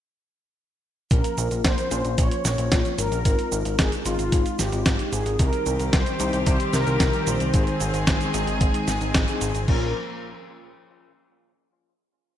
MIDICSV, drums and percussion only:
0, 0, Header, 1, 2, 480
1, 0, Start_track
1, 0, Tempo, 535714
1, 994, Time_signature, 4, 2, 24, 8
1, 11087, End_track
2, 0, Start_track
2, 0, Title_t, "Drums"
2, 994, Note_on_c, 9, 36, 117
2, 994, Note_on_c, 9, 42, 83
2, 994, Note_on_c, 9, 69, 35
2, 1083, Note_off_c, 9, 42, 0
2, 1083, Note_off_c, 9, 69, 0
2, 1084, Note_off_c, 9, 36, 0
2, 1114, Note_on_c, 9, 42, 41
2, 1114, Note_on_c, 9, 69, 19
2, 1204, Note_off_c, 9, 42, 0
2, 1204, Note_off_c, 9, 69, 0
2, 1233, Note_on_c, 9, 42, 37
2, 1233, Note_on_c, 9, 69, 67
2, 1323, Note_off_c, 9, 42, 0
2, 1323, Note_off_c, 9, 69, 0
2, 1354, Note_on_c, 9, 42, 37
2, 1354, Note_on_c, 9, 69, 27
2, 1444, Note_off_c, 9, 42, 0
2, 1444, Note_off_c, 9, 69, 0
2, 1474, Note_on_c, 9, 36, 107
2, 1474, Note_on_c, 9, 38, 122
2, 1474, Note_on_c, 9, 42, 94
2, 1474, Note_on_c, 9, 69, 39
2, 1564, Note_off_c, 9, 36, 0
2, 1564, Note_off_c, 9, 38, 0
2, 1564, Note_off_c, 9, 42, 0
2, 1564, Note_off_c, 9, 69, 0
2, 1594, Note_on_c, 9, 42, 39
2, 1594, Note_on_c, 9, 69, 20
2, 1684, Note_off_c, 9, 42, 0
2, 1684, Note_off_c, 9, 69, 0
2, 1714, Note_on_c, 9, 42, 67
2, 1714, Note_on_c, 9, 69, 64
2, 1803, Note_off_c, 9, 42, 0
2, 1803, Note_off_c, 9, 69, 0
2, 1833, Note_on_c, 9, 42, 39
2, 1833, Note_on_c, 9, 69, 28
2, 1923, Note_off_c, 9, 42, 0
2, 1923, Note_off_c, 9, 69, 0
2, 1954, Note_on_c, 9, 42, 96
2, 1954, Note_on_c, 9, 69, 38
2, 1955, Note_on_c, 9, 36, 113
2, 2043, Note_off_c, 9, 42, 0
2, 2043, Note_off_c, 9, 69, 0
2, 2044, Note_off_c, 9, 36, 0
2, 2074, Note_on_c, 9, 42, 42
2, 2074, Note_on_c, 9, 69, 20
2, 2164, Note_off_c, 9, 42, 0
2, 2164, Note_off_c, 9, 69, 0
2, 2194, Note_on_c, 9, 38, 37
2, 2194, Note_on_c, 9, 42, 69
2, 2194, Note_on_c, 9, 69, 73
2, 2284, Note_off_c, 9, 38, 0
2, 2284, Note_off_c, 9, 42, 0
2, 2284, Note_off_c, 9, 69, 0
2, 2314, Note_on_c, 9, 42, 40
2, 2314, Note_on_c, 9, 69, 27
2, 2404, Note_off_c, 9, 42, 0
2, 2404, Note_off_c, 9, 69, 0
2, 2434, Note_on_c, 9, 38, 116
2, 2434, Note_on_c, 9, 42, 97
2, 2434, Note_on_c, 9, 69, 39
2, 2435, Note_on_c, 9, 36, 119
2, 2524, Note_off_c, 9, 36, 0
2, 2524, Note_off_c, 9, 38, 0
2, 2524, Note_off_c, 9, 42, 0
2, 2524, Note_off_c, 9, 69, 0
2, 2555, Note_on_c, 9, 42, 40
2, 2555, Note_on_c, 9, 69, 18
2, 2645, Note_off_c, 9, 42, 0
2, 2645, Note_off_c, 9, 69, 0
2, 2674, Note_on_c, 9, 42, 67
2, 2674, Note_on_c, 9, 69, 69
2, 2764, Note_off_c, 9, 42, 0
2, 2764, Note_off_c, 9, 69, 0
2, 2795, Note_on_c, 9, 42, 43
2, 2795, Note_on_c, 9, 69, 29
2, 2884, Note_off_c, 9, 42, 0
2, 2884, Note_off_c, 9, 69, 0
2, 2914, Note_on_c, 9, 36, 109
2, 2914, Note_on_c, 9, 42, 89
2, 2914, Note_on_c, 9, 69, 33
2, 3004, Note_off_c, 9, 36, 0
2, 3004, Note_off_c, 9, 42, 0
2, 3004, Note_off_c, 9, 69, 0
2, 3035, Note_on_c, 9, 42, 39
2, 3035, Note_on_c, 9, 69, 18
2, 3124, Note_off_c, 9, 42, 0
2, 3124, Note_off_c, 9, 69, 0
2, 3154, Note_on_c, 9, 42, 38
2, 3154, Note_on_c, 9, 69, 64
2, 3244, Note_off_c, 9, 42, 0
2, 3244, Note_off_c, 9, 69, 0
2, 3274, Note_on_c, 9, 42, 39
2, 3274, Note_on_c, 9, 69, 27
2, 3363, Note_off_c, 9, 42, 0
2, 3363, Note_off_c, 9, 69, 0
2, 3393, Note_on_c, 9, 38, 121
2, 3393, Note_on_c, 9, 42, 95
2, 3393, Note_on_c, 9, 69, 38
2, 3394, Note_on_c, 9, 36, 113
2, 3483, Note_off_c, 9, 38, 0
2, 3483, Note_off_c, 9, 42, 0
2, 3483, Note_off_c, 9, 69, 0
2, 3484, Note_off_c, 9, 36, 0
2, 3514, Note_on_c, 9, 42, 42
2, 3514, Note_on_c, 9, 69, 20
2, 3604, Note_off_c, 9, 42, 0
2, 3604, Note_off_c, 9, 69, 0
2, 3634, Note_on_c, 9, 42, 64
2, 3634, Note_on_c, 9, 69, 67
2, 3723, Note_off_c, 9, 42, 0
2, 3723, Note_off_c, 9, 69, 0
2, 3754, Note_on_c, 9, 42, 40
2, 3754, Note_on_c, 9, 69, 28
2, 3843, Note_off_c, 9, 42, 0
2, 3843, Note_off_c, 9, 69, 0
2, 3873, Note_on_c, 9, 42, 93
2, 3873, Note_on_c, 9, 69, 37
2, 3874, Note_on_c, 9, 36, 118
2, 3963, Note_off_c, 9, 42, 0
2, 3963, Note_off_c, 9, 69, 0
2, 3964, Note_off_c, 9, 36, 0
2, 3993, Note_on_c, 9, 42, 45
2, 3993, Note_on_c, 9, 69, 20
2, 4083, Note_off_c, 9, 42, 0
2, 4083, Note_off_c, 9, 69, 0
2, 4113, Note_on_c, 9, 38, 40
2, 4113, Note_on_c, 9, 42, 68
2, 4113, Note_on_c, 9, 69, 65
2, 4203, Note_off_c, 9, 38, 0
2, 4203, Note_off_c, 9, 42, 0
2, 4203, Note_off_c, 9, 69, 0
2, 4233, Note_on_c, 9, 42, 40
2, 4233, Note_on_c, 9, 69, 27
2, 4323, Note_off_c, 9, 42, 0
2, 4323, Note_off_c, 9, 69, 0
2, 4353, Note_on_c, 9, 38, 118
2, 4353, Note_on_c, 9, 42, 92
2, 4353, Note_on_c, 9, 69, 38
2, 4354, Note_on_c, 9, 36, 127
2, 4442, Note_off_c, 9, 38, 0
2, 4442, Note_off_c, 9, 42, 0
2, 4442, Note_off_c, 9, 69, 0
2, 4444, Note_off_c, 9, 36, 0
2, 4472, Note_on_c, 9, 42, 40
2, 4472, Note_on_c, 9, 69, 19
2, 4562, Note_off_c, 9, 42, 0
2, 4562, Note_off_c, 9, 69, 0
2, 4593, Note_on_c, 9, 42, 66
2, 4593, Note_on_c, 9, 69, 61
2, 4682, Note_off_c, 9, 42, 0
2, 4682, Note_off_c, 9, 69, 0
2, 4713, Note_on_c, 9, 42, 43
2, 4713, Note_on_c, 9, 69, 27
2, 4802, Note_off_c, 9, 42, 0
2, 4802, Note_off_c, 9, 69, 0
2, 4832, Note_on_c, 9, 42, 91
2, 4832, Note_on_c, 9, 69, 36
2, 4834, Note_on_c, 9, 36, 125
2, 4922, Note_off_c, 9, 42, 0
2, 4922, Note_off_c, 9, 69, 0
2, 4924, Note_off_c, 9, 36, 0
2, 4952, Note_on_c, 9, 42, 38
2, 4952, Note_on_c, 9, 69, 19
2, 5042, Note_off_c, 9, 42, 0
2, 5042, Note_off_c, 9, 69, 0
2, 5072, Note_on_c, 9, 42, 37
2, 5072, Note_on_c, 9, 69, 64
2, 5162, Note_off_c, 9, 42, 0
2, 5162, Note_off_c, 9, 69, 0
2, 5193, Note_on_c, 9, 42, 37
2, 5193, Note_on_c, 9, 69, 26
2, 5282, Note_off_c, 9, 42, 0
2, 5282, Note_off_c, 9, 69, 0
2, 5313, Note_on_c, 9, 38, 126
2, 5313, Note_on_c, 9, 42, 99
2, 5313, Note_on_c, 9, 69, 40
2, 5314, Note_on_c, 9, 36, 116
2, 5403, Note_off_c, 9, 38, 0
2, 5403, Note_off_c, 9, 42, 0
2, 5403, Note_off_c, 9, 69, 0
2, 5404, Note_off_c, 9, 36, 0
2, 5433, Note_on_c, 9, 42, 42
2, 5433, Note_on_c, 9, 69, 18
2, 5523, Note_off_c, 9, 42, 0
2, 5523, Note_off_c, 9, 69, 0
2, 5553, Note_on_c, 9, 42, 64
2, 5553, Note_on_c, 9, 69, 66
2, 5642, Note_off_c, 9, 42, 0
2, 5642, Note_off_c, 9, 69, 0
2, 5673, Note_on_c, 9, 42, 40
2, 5673, Note_on_c, 9, 69, 29
2, 5762, Note_off_c, 9, 42, 0
2, 5762, Note_off_c, 9, 69, 0
2, 5792, Note_on_c, 9, 42, 93
2, 5792, Note_on_c, 9, 69, 36
2, 5794, Note_on_c, 9, 36, 119
2, 5882, Note_off_c, 9, 42, 0
2, 5882, Note_off_c, 9, 69, 0
2, 5884, Note_off_c, 9, 36, 0
2, 5913, Note_on_c, 9, 42, 44
2, 5913, Note_on_c, 9, 69, 19
2, 6002, Note_off_c, 9, 42, 0
2, 6002, Note_off_c, 9, 69, 0
2, 6033, Note_on_c, 9, 38, 40
2, 6033, Note_on_c, 9, 42, 70
2, 6033, Note_on_c, 9, 69, 66
2, 6123, Note_off_c, 9, 38, 0
2, 6123, Note_off_c, 9, 42, 0
2, 6123, Note_off_c, 9, 69, 0
2, 6153, Note_on_c, 9, 42, 37
2, 6153, Note_on_c, 9, 69, 27
2, 6243, Note_off_c, 9, 42, 0
2, 6243, Note_off_c, 9, 69, 0
2, 6273, Note_on_c, 9, 38, 117
2, 6273, Note_on_c, 9, 42, 91
2, 6273, Note_on_c, 9, 69, 37
2, 6274, Note_on_c, 9, 36, 123
2, 6362, Note_off_c, 9, 38, 0
2, 6362, Note_off_c, 9, 42, 0
2, 6362, Note_off_c, 9, 69, 0
2, 6364, Note_off_c, 9, 36, 0
2, 6393, Note_on_c, 9, 42, 38
2, 6393, Note_on_c, 9, 69, 18
2, 6482, Note_off_c, 9, 42, 0
2, 6482, Note_off_c, 9, 69, 0
2, 6513, Note_on_c, 9, 42, 65
2, 6513, Note_on_c, 9, 69, 61
2, 6603, Note_off_c, 9, 42, 0
2, 6603, Note_off_c, 9, 69, 0
2, 6633, Note_on_c, 9, 42, 39
2, 6633, Note_on_c, 9, 69, 28
2, 6723, Note_off_c, 9, 42, 0
2, 6723, Note_off_c, 9, 69, 0
2, 6753, Note_on_c, 9, 42, 86
2, 6753, Note_on_c, 9, 69, 35
2, 6754, Note_on_c, 9, 36, 116
2, 6842, Note_off_c, 9, 42, 0
2, 6842, Note_off_c, 9, 69, 0
2, 6844, Note_off_c, 9, 36, 0
2, 6873, Note_on_c, 9, 42, 37
2, 6873, Note_on_c, 9, 69, 19
2, 6962, Note_off_c, 9, 42, 0
2, 6962, Note_off_c, 9, 69, 0
2, 6993, Note_on_c, 9, 42, 37
2, 6993, Note_on_c, 9, 69, 68
2, 7082, Note_off_c, 9, 42, 0
2, 7082, Note_off_c, 9, 69, 0
2, 7113, Note_on_c, 9, 42, 37
2, 7113, Note_on_c, 9, 69, 28
2, 7202, Note_off_c, 9, 42, 0
2, 7202, Note_off_c, 9, 69, 0
2, 7233, Note_on_c, 9, 38, 126
2, 7233, Note_on_c, 9, 42, 91
2, 7233, Note_on_c, 9, 69, 39
2, 7234, Note_on_c, 9, 36, 118
2, 7322, Note_off_c, 9, 38, 0
2, 7322, Note_off_c, 9, 42, 0
2, 7322, Note_off_c, 9, 69, 0
2, 7324, Note_off_c, 9, 36, 0
2, 7353, Note_on_c, 9, 42, 37
2, 7353, Note_on_c, 9, 69, 19
2, 7443, Note_off_c, 9, 42, 0
2, 7443, Note_off_c, 9, 69, 0
2, 7473, Note_on_c, 9, 42, 62
2, 7473, Note_on_c, 9, 69, 63
2, 7563, Note_off_c, 9, 42, 0
2, 7563, Note_off_c, 9, 69, 0
2, 7593, Note_on_c, 9, 42, 38
2, 7593, Note_on_c, 9, 69, 29
2, 7682, Note_off_c, 9, 42, 0
2, 7682, Note_off_c, 9, 69, 0
2, 7713, Note_on_c, 9, 42, 88
2, 7713, Note_on_c, 9, 69, 37
2, 7714, Note_on_c, 9, 36, 115
2, 7802, Note_off_c, 9, 42, 0
2, 7802, Note_off_c, 9, 69, 0
2, 7804, Note_off_c, 9, 36, 0
2, 7833, Note_on_c, 9, 42, 42
2, 7833, Note_on_c, 9, 69, 20
2, 7923, Note_off_c, 9, 42, 0
2, 7923, Note_off_c, 9, 69, 0
2, 7954, Note_on_c, 9, 38, 40
2, 7954, Note_on_c, 9, 42, 67
2, 7954, Note_on_c, 9, 69, 71
2, 8043, Note_off_c, 9, 38, 0
2, 8043, Note_off_c, 9, 42, 0
2, 8043, Note_off_c, 9, 69, 0
2, 8074, Note_on_c, 9, 42, 37
2, 8074, Note_on_c, 9, 69, 28
2, 8163, Note_off_c, 9, 42, 0
2, 8163, Note_off_c, 9, 69, 0
2, 8194, Note_on_c, 9, 36, 124
2, 8194, Note_on_c, 9, 38, 122
2, 8194, Note_on_c, 9, 42, 87
2, 8194, Note_on_c, 9, 69, 35
2, 8283, Note_off_c, 9, 38, 0
2, 8283, Note_off_c, 9, 42, 0
2, 8283, Note_off_c, 9, 69, 0
2, 8284, Note_off_c, 9, 36, 0
2, 8314, Note_on_c, 9, 42, 40
2, 8314, Note_on_c, 9, 69, 18
2, 8404, Note_off_c, 9, 42, 0
2, 8404, Note_off_c, 9, 69, 0
2, 8433, Note_on_c, 9, 42, 65
2, 8433, Note_on_c, 9, 69, 64
2, 8523, Note_off_c, 9, 42, 0
2, 8523, Note_off_c, 9, 69, 0
2, 8554, Note_on_c, 9, 42, 40
2, 8554, Note_on_c, 9, 69, 28
2, 8643, Note_off_c, 9, 42, 0
2, 8643, Note_off_c, 9, 69, 0
2, 8674, Note_on_c, 9, 36, 110
2, 8674, Note_on_c, 9, 49, 78
2, 8763, Note_off_c, 9, 49, 0
2, 8764, Note_off_c, 9, 36, 0
2, 11087, End_track
0, 0, End_of_file